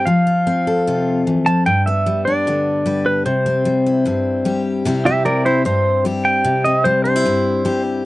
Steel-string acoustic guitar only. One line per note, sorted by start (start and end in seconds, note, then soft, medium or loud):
0.07 1.46 F3 medium
0.27 0.86 F4 medium
0.47 1.64 C4 medium
0.67 1.64 A4 medium
0.87 1.27 C3 medium
0.87 1.65 F4 medium
1.27 1.47 E3 medium
1.47 1.67 F3 medium
1.66 3.26 G2 medium
1.87 2.46 B3 medium
2.06 2.85 G3 medium
2.27 3.26 D4 medium
2.47 3.24 D3 medium
2.47 3.24 B3 medium
2.86 3.65 G3 medium
2.86 3.24 B4 medium
3.26 4.05 C3 medium
3.46 4.05 C4 medium
3.65 4.44 G3 medium
3.86 4.83 E4 medium
4.05 4.85 G2 medium
4.05 4.83 C4 medium
4.45 4.83 G3 medium
4.45 4.87 G4 medium
4.85 5.65 C3 medium
4.85 5.25 G3 medium
4.85 5.06 C4 medium
4.85 5.45 E4 medium
4.85 6.06 G4 medium
5.06 5.65 C4 medium
5.25 6.04 G3 medium
5.46 7.05 E4 medium
5.65 6.45 G2 medium
5.65 6.65 C4 medium
6.05 6.85 G3 medium
6.05 7.64 G4 medium
6.44 7.24 C3 medium
6.65 7.26 C4 medium
6.85 7.64 G3 medium
7.05 7.16 D4 medium
7.16 8.05 E4 soft
7.25 8.05 G2 medium
7.25 8.05 C4 medium
7.65 8.02 G3 medium
7.65 8.05 G4 medium